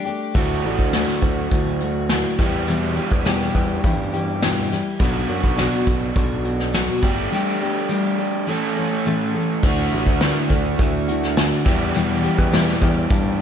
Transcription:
0.05 steel-string acoustic guitar A3 D4 G4
0.34 picked electric bass D2, steel-string acoustic guitar D3 A3 E4 F#4, overdriven electric guitar F#3 D4, kick, closed hi-hat
0.64 picked electric bass A1, steel-string acoustic guitar A3 E4 F#4, closed hi-hat
0.79 picked electric bass D2, kick
0.93 steel-string acoustic guitar D3 A3 E4 F#4, snare, closed hi-hat
1.08 snare
1.21 picked electric bass D2, steel-string acoustic guitar A3 E4 F#4, kick, closed hi-hat
1.51 picked electric bass D2, steel-string acoustic guitar D3 A3 E4 F#4, kick, closed hi-hat
1.80 steel-string acoustic guitar A3 E4 F#4, closed hi-hat
2.09 steel-string acoustic guitar D3 A3 E4 F#4, snare, closed hi-hat
2.38 overdriven electric guitar E2 B2, picked electric bass E2, steel-string acoustic guitar E3 G3 E4 G4, kick, snare, closed hi-hat
2.67 steel-string acoustic guitar E2 B2 E3 G3 E4 G4, closed hi-hat
2.96 steel-string acoustic guitar E3 G3 E4 G4, closed hi-hat
3.11 picked electric bass E2, kick
3.25 steel-string acoustic guitar E2 B2 E3 G3 E4 G4, snare, closed hi-hat
3.41 snare
3.54 picked electric bass E2, steel-string acoustic guitar E3 G3 E4 G4, kick, closed hi-hat
3.83 picked electric bass G2, steel-string acoustic guitar E3 G3 E4 G4, kick, closed hi-hat
4.12 steel-string acoustic guitar E3 G3 E4 G4, closed hi-hat
4.42 steel-string acoustic guitar E2 B2 E3 G3 E4 G4, snare, closed hi-hat
4.71 steel-string acoustic guitar E3 G3 E4 G4, snare, closed hi-hat
5.00 picked electric bass B1, steel-string acoustic guitar B2 F#3 B3 D4 F#4, kick, closed hi-hat
5.29 picked electric bass F#2, steel-string acoustic guitar B3 D4 F#4, closed hi-hat
5.44 picked electric bass B1, kick
5.57 steel-string acoustic guitar B2 F#3 B3 D4 F#4, snare, closed hi-hat
5.86 picked electric bass B1, steel-string acoustic guitar B3 D4 F#4, kick, closed hi-hat
6.15 picked electric bass B1, steel-string acoustic guitar F#3 B3 D4 F#4, kick, closed hi-hat
6.45 steel-string acoustic guitar B3 D4 F#4, closed hi-hat
6.60 snare
6.73 steel-string acoustic guitar B2 F#3 B3 D4 F#4, snare, closed hi-hat
7.02 picked electric bass G1, overdriven electric guitar G3, steel-string acoustic guitar A3 D4 G4, kick, closed hi-hat
7.32 steel-string acoustic guitar G3 A3 D4 G4
7.61 steel-string acoustic guitar A3 D4 G4
7.89 steel-string acoustic guitar G3 A3 D4 G4
8.18 steel-string acoustic guitar A3 D4 G4
8.46 overdriven electric guitar A2, steel-string acoustic guitar E3 A3 C#4 A4
8.76 steel-string acoustic guitar A3 C#4 A4
9.05 steel-string acoustic guitar A2 E3 A3 C#4 A4
9.34 steel-string acoustic guitar A3 C#4 A4
9.63 picked electric bass D2, steel-string acoustic guitar D3 A3 E4 F#4, overdriven electric guitar D4, kick, crash
9.91 picked electric bass A1, steel-string acoustic guitar A3 E4 F#4, closed hi-hat
10.06 picked electric bass D2, kick
10.20 steel-string acoustic guitar D3 A3 E4 F#4, snare, closed hi-hat
10.48 picked electric bass D2, steel-string acoustic guitar A3 E4 F#4, kick, closed hi-hat
10.78 picked electric bass D2, steel-string acoustic guitar D3 A3 E4 F#4, kick, closed hi-hat
11.08 steel-string acoustic guitar A3 E4 F#4, closed hi-hat
11.23 snare
11.37 steel-string acoustic guitar D3 A3 E4 F#4, snare, closed hi-hat
11.65 overdriven electric guitar E2 B2 B3, picked electric bass E2, steel-string acoustic guitar E3 G3 E4 G4, kick, snare, closed hi-hat
11.94 steel-string acoustic guitar E2 B2 E3 G3 E4 G4, closed hi-hat
12.23 steel-string acoustic guitar E3 G3 E4 G4, closed hi-hat
12.38 picked electric bass E2, kick
12.52 steel-string acoustic guitar E2 B2 E3 G3 E4 G4, snare, closed hi-hat
12.68 snare
12.81 picked electric bass E2, steel-string acoustic guitar E3 G3 E4 G4, kick, closed hi-hat
13.10 picked electric bass G2, steel-string acoustic guitar E3 G3 E4 G4, kick, closed hi-hat

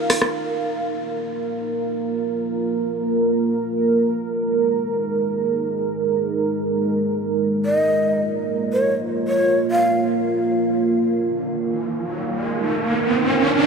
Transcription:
Already playing: ambient pad D#4 A#4 F5
0.10 cross-stick, open hi-hat
0.22 cross-stick
0.31 ambient pad A#3 F4 A#4
3.77 ambient pad G#3 D#4
7.22 ambient pad A#3 F4
7.65 shakuhachi D#5
8.73 shakuhachi C#5
9.28 shakuhachi C#5
9.71 shakuhachi F5
10.67 ambient pad D#4 A#4 F5, riser

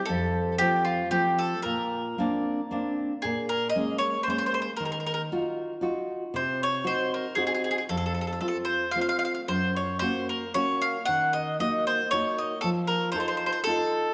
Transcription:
0.06 nylon-string guitar F2, mandolin A4
0.58 nylon-string guitar F3 A3 C4, mandolin G4
0.85 mandolin F4
1.11 nylon-string guitar F3 A3 C4, mandolin G4
1.39 mandolin A4
1.62 nylon-string guitar A#2, mandolin A#4
2.18 nylon-string guitar A#3 C4 D4
2.71 nylon-string guitar A#3 C4 D4
3.22 nylon-string guitar A#2, mandolin G#4
3.49 mandolin A#4
3.70 mandolin D#5
3.75 nylon-string guitar G#3 A#3 C#4
3.98 mandolin C#5
4.23 mandolin C5
4.28 nylon-string guitar G#3 A#3 C#4, mandolin C5
4.38 mandolin C5
4.46 mandolin C5
4.54 mandolin C5
4.62 mandolin C5
4.77 nylon-string guitar D#3, mandolin A#4
4.85 mandolin A#4
4.92 mandolin A#4
5.00 mandolin A#4
5.07 mandolin A#4
5.14 mandolin A#4
5.32 nylon-string guitar D#4 F4 F#4
5.81 nylon-string guitar D#4 F4 F#4
6.34 nylon-string guitar C3, mandolin C5
6.63 mandolin C#5
6.84 nylon-string guitar C4 D#4 F#4, mandolin C5
7.14 mandolin A#4
7.35 nylon-string guitar C4 D#4 F#4, mandolin G#4
7.47 mandolin G#4
7.54 mandolin G#4
7.64 mandolin G#4
7.71 mandolin G#4
7.78 mandolin G#4
7.89 nylon-string guitar F2, mandolin A4
7.97 mandolin A4
8.06 mandolin A4
8.14 mandolin A4
8.21 mandolin A4
8.27 mandolin A4
8.33 mandolin A4
8.41 nylon-string guitar A3 C4 F4, mandolin A4
8.48 mandolin A4
8.65 mandolin C5
8.91 mandolin F5
8.96 nylon-string guitar A3 C4 F4
9.01 mandolin F5
9.09 mandolin F5
9.19 mandolin F5
9.25 mandolin F5
9.34 mandolin F5
9.48 nylon-string guitar F#2, mandolin C5
9.76 mandolin C#5
9.99 nylon-string guitar A#3 C#4 F#4, mandolin C5
10.29 mandolin A#4
10.54 nylon-string guitar A#3 C#4 F#4, mandolin C#5
10.82 mandolin F5
11.05 nylon-string guitar D#3, mandolin F#5
11.33 mandolin D#5
11.60 nylon-string guitar A#3 D#4 F#4, mandolin D#5
11.87 mandolin C5
12.11 nylon-string guitar A#3 D#4 F#4, mandolin C#5
12.38 mandolin D#5
12.61 nylon-string guitar F3, mandolin A4
12.87 mandolin A#4
13.12 nylon-string guitar D#4 F4 A4, mandolin C5
13.20 mandolin C5
13.28 mandolin C5
13.37 mandolin C5
13.46 mandolin C5
13.53 mandolin C5
13.64 nylon-string guitar D#4 F4, mandolin A4
13.68 nylon-string guitar A4

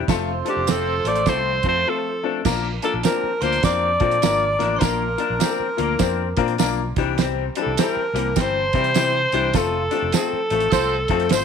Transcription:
Already playing: tonewheel organ C4
0.07 fingered electric bass F1, tonewheel organ F3 A4, grand piano A3 C4 F4 A4, horn section F4 A4 C5, clean electric guitar F4, kick, snare, closed hi-hat, tambourine
0.45 grand piano A3 C4 F4 A4, clean electric guitar D4, closed hi-hat
0.49 alto saxophone G4
0.56 fingered electric bass F1
0.67 grand piano A3 C4 F4 C5, clean electric guitar C4, alto saxophone A4, snare, closed hi-hat, tambourine
1.04 fingered electric bass A1, grand piano A3 C4 F4 A4, clean electric guitar A3, alto saxophone D5, closed hi-hat
1.16 closed hi-hat
1.26 fingered electric bass C2, grand piano A3 C4 F4 A4, clean electric guitar C4, alto saxophone C5, kick, snare, closed hi-hat, tambourine
1.63 fingered electric bass F2, grand piano A3 C4 F4 A4, clean electric guitar C4, kick, closed hi-hat
1.68 alto saxophone C5
1.87 grand piano A3 C4 F4 A4, alto saxophone A4
2.23 grand piano A3 C4 F4 A4, clean electric guitar D4
2.45 fingered electric bass A#1, grand piano F3 A#3 D4 F4 A#4, clean electric guitar A#3, kick, snare, crash, tambourine
2.82 grand piano F3 A#3 D4 F4 A#4, clean electric guitar D4, alto saxophone A4, glockenspiel A5, closed hi-hat
2.94 fingered electric bass A#1
3.03 grand piano F3 A#3 D4 F4 A#4, clean electric guitar C4, alto saxophone A#4, glockenspiel A#5, snare, closed hi-hat, tambourine
3.23 muted fingered electric bass stroke
3.41 fingered electric bass D2, grand piano F3 A#3 D4 F4 A#4, clean electric guitar A#3, alto saxophone C5, glockenspiel C6, closed hi-hat
3.53 closed hi-hat
3.63 fingered electric bass F2, grand piano F3 A#3 D4 F4 A#4, clean electric guitar C4, alto saxophone D5, glockenspiel D6, kick, snare, closed hi-hat, tambourine
4.00 fingered electric bass A#2, grand piano F3 A#3 D4 F4 A4, clean electric guitar C4, kick, closed hi-hat
4.11 closed hi-hat
4.22 fingered electric bass G#1, grand piano F3 A#3 D4 F4 A#4, snare, closed hi-hat, tambourine
4.59 fingered electric bass A1, grand piano F3 A#3 D4 F4 A#4, clean electric guitar D4, snare, closed hi-hat
4.76 grand piano A#3 A#4, alto saxophone C5, glockenspiel C6
4.80 fingered electric bass A#1, grand piano F3 D4 F4, clean electric guitar A#3, alto saxophone A#4, glockenspiel A#5, kick, snare, closed hi-hat, tambourine
5.17 grand piano F3 A#3 D4 F4 A#4, clean electric guitar D4, closed hi-hat
5.30 fingered electric bass A#1
5.39 grand piano F3 A#3 D4 F4 A#4, clean electric guitar C4, glockenspiel A#5, snare, closed hi-hat, tambourine
5.45 alto saxophone A#4
5.60 muted fingered electric bass stroke
5.77 fingered electric bass D2, grand piano F3 A#3 D4 F4 A#4, clean electric guitar A#3, closed hi-hat
5.99 fingered electric bass F2, grand piano F3 A#3 D4 F4 C5, clean electric guitar C4, kick, snare, closed hi-hat, tambourine
6.37 fingered electric bass A#2, grand piano F3 A#3 D4 F4 A#4, clean electric guitar C4, kick, closed hi-hat
6.48 closed hi-hat
6.58 fingered electric bass B1, grand piano F3 A#3 D4 F4 A#4, snare, closed hi-hat, tambourine
6.96 fingered electric bass C2, grand piano E3 G3 C4 E4 G4, clean electric guitar D4, kick, snare, closed hi-hat
7.18 clean electric guitar C4, snare, closed hi-hat, tambourine
7.55 grand piano E3 G3 C4 E4 G4, clean electric guitar D4, glockenspiel A5, closed hi-hat
7.61 alto saxophone A4
7.66 fingered electric bass C2
7.77 grand piano E3 G3 C4 E4 G4, clean electric guitar C4, glockenspiel A#5, snare, closed hi-hat, tambourine
7.83 alto saxophone A#4
7.96 muted fingered electric bass stroke
8.14 fingered electric bass C2, grand piano E3 G3 C4 E4 G4, clean electric guitar A#3, closed hi-hat
8.36 fingered electric bass G1, grand piano E3 G3 C4 E4 G4, clean electric guitar C4, kick, snare, closed hi-hat, tambourine
8.40 alto saxophone C5, glockenspiel C6
8.73 fingered electric bass C3, grand piano E3 G3 C4 E4 G4, clean electric guitar C4, kick, closed hi-hat
8.84 closed hi-hat
8.94 grand piano E3 G3 C4 E4 G4, snare, closed hi-hat, tambourine
9.32 fingered electric bass C2, grand piano E3 G3 C4 E4 G4, clean electric guitar D4, closed hi-hat
9.54 fingered electric bass F1, grand piano F3 A3 C4 F4 A4, clean electric guitar F4, alto saxophone A4, glockenspiel A5, kick, snare, closed hi-hat, tambourine
9.91 grand piano F3 A3 C4 F4 G4, clean electric guitar D4, closed hi-hat
10.02 fingered electric bass F1
10.12 grand piano F3 A3 C4 F4 A4, clean electric guitar C4, alto saxophone A4, glockenspiel A5, snare, closed hi-hat, tambourine
10.33 muted fingered electric bass stroke
10.50 fingered electric bass A1, grand piano F3 A3 C4 F4 A4, clean electric guitar A3, closed hi-hat
10.60 closed hi-hat
10.71 fingered electric bass C2, grand piano F3 A3 C4 F4 A4, clean electric guitar C4, horn section F4 A4 C5, kick, snare, closed hi-hat, tambourine
11.08 fingered electric bass F2, grand piano F3 A3 C4 F4 A4, clean electric guitar C4, kick, closed hi-hat
11.20 closed hi-hat
11.29 fingered electric bass G#1, grand piano F3 A3 C4 F4 C5, alto saxophone C5, glockenspiel C6, snare, closed hi-hat, tambourine

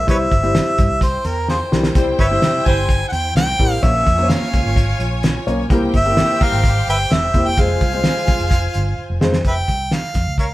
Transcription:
0.07 fingered electric bass C2, upright piano G3 C4 E4 G4 C5, harmonica B4 C#5 E5, kick, closed hi-hat
0.31 fingered electric bass G1, kick, closed hi-hat
0.43 upright piano G3 C4 E4 G4 C5, closed hi-hat
0.55 snare, closed hi-hat
0.78 fingered electric bass G2, kick, closed hi-hat
0.90 fingered electric bass C2
1.01 string section E4 C5 G5, harmonica C5, kick, closed hi-hat
1.25 fingered electric bass E2, harmonica A#4, closed hi-hat
1.48 harmonica F4 G#4 C5, snare
1.72 fingered electric bass B1, upright piano G3 C4 E4 G4 A#4, snare
1.83 snare
1.95 fingered electric bass C2, horn section G3 E4 C5, upright piano G3 C4 E4 G4 C5, kick, closed hi-hat
2.19 fingered electric bass G1, harmonica B4 C#5 E5, kick, closed hi-hat
2.31 upright piano G3 C4 E4 G4 C5
2.42 fingered electric bass C3, snare, closed hi-hat
2.66 fingered electric bass G1, horn section G3 E4 C5, harmonica G#5, kick, snare, closed hi-hat
2.89 kick, closed hi-hat
3.08 fingered electric bass E2, harmonica F#5 G5
3.13 closed hi-hat
3.35 fingered electric bass C2, harmonica G5, snare, closed hi-hat
3.59 fingered electric bass A1, upright piano G3 C4 E4 G4 A#4, kick, open hi-hat
3.72 harmonica F5
3.83 fingered electric bass A#1, upright piano A#3 C#4 F4 A#4 C#5, string section F4 C#5 G#5, harmonica E5, kick, closed hi-hat
4.06 fingered electric bass F2, kick, closed hi-hat
4.18 upright piano A#3 C#4 F4 A#4 C5, closed hi-hat
4.24 upright piano C#5
4.30 harmonica F5, snare, closed hi-hat
4.42 snare
4.53 fingered electric bass C#2, kick, closed hi-hat
4.65 fingered electric bass G#1
4.76 kick, closed hi-hat
4.99 fingered electric bass A#1, closed hi-hat
5.23 snare, closed hi-hat
5.47 fingered electric bass B1, upright piano A#3 C#4 F4 A#4 C#5, closed hi-hat
5.69 fingered electric bass C2, horn section G3 E4 A#4, upright piano A#3 C4 E4 G4 A#4, string section G4 C5 G5, kick, closed hi-hat
5.94 fingered electric bass G1, harmonica E5, kick, closed hi-hat
6.05 upright piano A#3 C4 C#4 G4 A#4, closed hi-hat
6.11 upright piano E4
6.17 snare, closed hi-hat
6.29 snare
6.40 fingered electric bass C2, horn section E3 G3 A#4, harmonica F5, kick, closed hi-hat
6.52 fingered electric bass G#1, closed hi-hat
6.64 kick, closed hi-hat
6.87 fingered electric bass G1, harmonica B4 E5 G5, closed hi-hat
7.10 fingered electric bass E1, harmonica E5, snare, closed hi-hat
7.34 fingered electric bass E1, upright piano A#3 C4 E4 G4 C5, kick, closed hi-hat
7.48 harmonica G5
7.57 fingered electric bass F1, upright piano G#3 C4 F4 G#4 C5, string section F4 C5 G#5, harmonica F5, kick, closed hi-hat
7.81 fingered electric bass C2, kick, closed hi-hat
7.92 upright piano G#3 C4 F4 G#4 C5, closed hi-hat
8.04 snare, closed hi-hat
8.17 snare
8.27 fingered electric bass C2, kick, snare, closed hi-hat
8.39 fingered electric bass F1, closed hi-hat
8.51 kick, closed hi-hat
8.74 fingered electric bass G1, closed hi-hat
9.10 fingered electric bass F1
9.21 fingered electric bass F2, upright piano G#3 C4 F4 G#4 C5, snare
9.33 snare
9.44 fingered electric bass F1, harmonica B4 E5 G5, kick, closed hi-hat
9.68 fingered electric bass C2, kick, closed hi-hat
9.91 harmonica F5, snare, closed hi-hat
10.04 snare
10.14 fingered electric bass F2, kick, snare, closed hi-hat
10.26 fingered electric bass C#2
10.38 harmonica A#4 C#5 F5, kick, closed hi-hat

